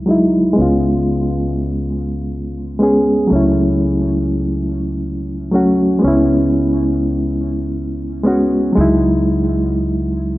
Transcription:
Already playing: C#2
0.06 F#3 G#3 D#4
0.11 E4
0.53 G#3 B3
0.58 C#2 C#4 F4
2.79 G#3 B3 C#4 G#4
3.27 F#3 A3
3.31 C#2 C#4
3.36 E4
5.51 F#3 A3 C#4
5.55 F#4
5.99 G#3 B3
6.04 C#2 C#4 E4
8.23 G#3 B3 C#4
8.28 F#4
8.73 F#3 G#3
8.77 C#2 D#4 E4

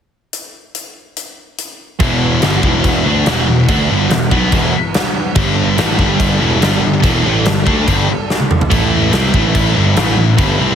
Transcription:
0.33 closed hi-hat
0.75 closed hi-hat
1.17 closed hi-hat
1.58 closed hi-hat
1.99 E1 E2 B2 E3 B3 F#4, kick, crash
2.42 G1 G2 D3 G3, snare, crash
2.63 E1 E2 B2 E3, kick
2.84 kick, crash
3.06 D2 D3 A3 D4
3.26 E1 E2 B2 E3, snare, crash
3.48 E1 E2 B2
3.68 D2 D3 A3 D4, kick, crash
3.89 G1 G2 D3 G3
4.10 E1 E2 B2, snare, crash
4.31 B1 B2 F#3 B3, kick
4.52 E1 E2 B2 E3, kick, crash
4.94 snare, crash
5.35 G1 G2 D3 G3 D4 A4, kick, crash
5.77 A1 A2 E3 A3, snare, crash
5.98 G1 G2 D3 G3, kick
6.20 kick, crash
6.40 E1 E2 B2 E3
6.60 G1 G2 D3 G3, snare, crash
6.81 G1 G2 D3
7.02 E1 E2 B2 E3, kick, crash
7.23 A1 A2 E3 A3
7.45 G1 G2 D3, snare, crash
7.66 D2 D3 A3 D4, kick
7.87 G1 G2 D3 G3, kick, crash
8.30 snare
8.40 high tom
8.51 mid tom
8.61 floor tom
8.71 A1 A2 E3 A3 E4 B4, kick, crash
9.12 C2 C3 G3 C4, snare, crash
9.34 A1 A2 E3 A3, kick
9.55 kick, crash
9.75 G1 G2 D3 G3
9.96 A1 A2 E3 A3, snare, crash
10.17 A1 A2 E3
10.38 G1 G2 D3 G3, kick, crash
10.59 C2 C3 G3 C4

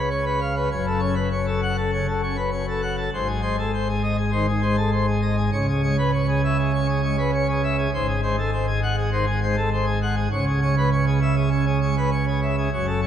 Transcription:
Already playing: C#2 C#3
0.10 C#5
0.26 B4
0.41 F5
0.56 B4
0.71 F#1 F#2 C#5
0.87 A4
0.99 C#4 C#5
1.15 B4
1.32 C#5
1.47 A4
1.62 F#5
1.77 A4
1.93 C#3 C#5
2.08 A4
2.23 C#4 C#5
2.37 B4
2.52 C#5
2.68 A4
2.82 F#5
2.97 A4
3.13 G#1 G#2 C5
3.27 G#4
3.42 G#3 C5
3.59 A4
3.74 C5
3.89 G#4
4.03 D#5
4.17 G#4
4.32 D#3 C5
4.49 G#4
4.62 G#3 C5
4.77 A4
4.92 C5
5.07 G#4
5.22 D#5
5.37 G#4
5.52 C#2 C#3 C#5
5.68 G#4
5.83 G#3 C#5
5.99 B4
6.13 C#5
6.28 G#4
6.44 E5
6.59 G#4
6.74 C#4 C#5
6.88 G#4
7.03 G#3 C#5
7.19 B4
7.34 C#5
7.49 G#4
7.64 E5
7.78 G#4
7.94 G#1 G#2 C5
8.08 G#4
8.23 G#3 C5
8.39 A4
8.53 C5
8.67 G#4
8.83 F#5
8.97 G#4
9.12 D#3 C5
9.27 G#4
9.43 G#3 C5
9.57 A4
9.73 C5
9.86 G#4
10.02 F#5
10.16 G#4
10.32 C#2 C#3 C#5
10.48 G#4
10.62 G#3 C#5
10.78 B4
10.92 C#5
11.07 G#4
11.22 E5
11.36 G#4
11.51 C#4 C#5
11.66 G#4
11.82 G#3 C#5
11.97 B4
12.12 C#5
12.27 G#4
12.42 E5
12.58 G#4
12.73 F#1 F#2 C#5
12.87 A4
13.02 A3 C#5

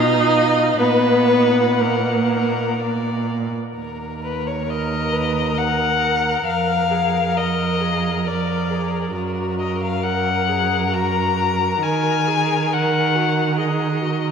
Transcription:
Already playing: B2 D#4 D#5
0.30 F5
0.79 A#2 B3 B4 F#5
1.81 A#3 A#4
2.80 D5
3.76 D#2 A#4
4.24 B4
4.47 C#5
4.69 A#4 D#5
5.13 B4
5.56 A#4 F#5
6.46 F2 A#4 F5
6.91 G#4
7.36 A#4 D#5
7.81 G#4
8.25 A#4 D5
8.70 G#4
9.15 F#2 F#4 A#4
9.59 D#5
9.83 F5
10.03 A#4 F#5
10.49 G#4
10.93 F#4 A#5
11.82 D#3 A#4 G#5
12.28 G#4
12.71 A#4 F#5
13.15 F#4
13.58 G#4 D#5
14.02 F#4

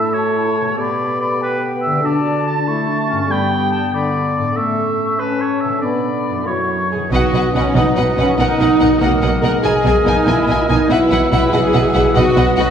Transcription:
Already playing: A2 A3 E4 C#5 E5 A5
0.14 F#4 C#5
0.36 E4
0.57 B2 A4
0.65 A3
0.70 G4
0.74 B3 G4 A4 D5
0.81 B5
1.21 D5
1.41 B4 G5
1.82 E5
1.86 D3
1.91 A3
1.95 F#4
2.00 D4 A4
2.04 F#4 D5 A5
2.47 A5
2.68 A3 E4 C#6
2.88 D4
3.08 G2 C#4
3.17 B3
3.21 D4
3.26 G3 B3 A4
3.31 G5 B5
3.52 G5
3.72 A5
3.93 D3 D5 B5
4.38 A2
4.43 A3
4.47 C#4
4.52 A4
4.56 A3 E5 C#6
5.18 C#4 B4 A5
5.41 C#5
5.61 B2 E5
5.70 A3
5.74 D4
5.79 B3 D4 A4 D5 B5
6.30 F#2
6.34 F#3
6.38 E4
6.43 F#3 E4 A#4 C#5 C#6
6.92 B2 G#4
6.99 F#3
7.03 D#4
7.08 B2 F#3 D#4 B4
7.12 B1 F#4 B4 D#5 F#5
7.32 B1 B2 B4 D#5 F#5
7.54 B1 B2 C#4 B4 D#5 F#5
7.74 B1 B2 F#3 D#4 B4 D#5 F#5
7.96 B1 B2 B4 D#5 F#5
8.09 D#4
8.17 B1 B2 C#4 B4 D#5 F#5
8.22 B2
8.26 F#3
8.31 D#4
8.35 B1 B2 F#3 D#4 A#4 D#5
8.39 D#4 A#4 F#5
8.59 B1 B2 A#4 D#5 F#5
8.80 B1 B2 A#4 D#5 F#5
9.00 B1 B2 F#3 A#3 D#4 A#4 D#5 F#5
9.22 B1 B2 A#4 D#5 F#5
9.33 G#3
9.42 B1 B2 A#4 D#5 F#5
9.47 B2
9.51 A#3
9.56 D#4
9.61 B2 G#4 A#4 D#5 G#5
9.65 B1 A#3 D#5
9.84 B1 B2 A#4 D#5 G#5
10.04 B1 B2 D#4 A#4 D#5 G#5
10.26 B1 B2 E4 A#4 D#5 G#5
10.47 B1 B2 A#4 D#5 G#5
10.60 E4
10.69 B1 B2 D#4 A#4 D#5 G#5
10.77 B3
10.82 E4
10.86 B1 B2 F#3 E4 F#4 F#5
10.90 E4 B4 E5 F#5
11.10 B1 B2 B4 E5 F#5
11.31 B1 B2 E4 B4 E5 F#5
11.52 B1 B2 F#3 E4 G#4 B4 E5 F#5
11.74 B1 B2 B4 E5 F#5
11.94 B1 B2 B4 E5 F#5
12.02 B3
12.07 D#4
12.11 B1 F#4 B4 D#5 F#5
12.16 B2 F#3 D#4 F#4 B4 D#5
12.36 B1 B2 B4 D#5 F#5
12.56 B1 B2 F#4 B4 D#5 F#5

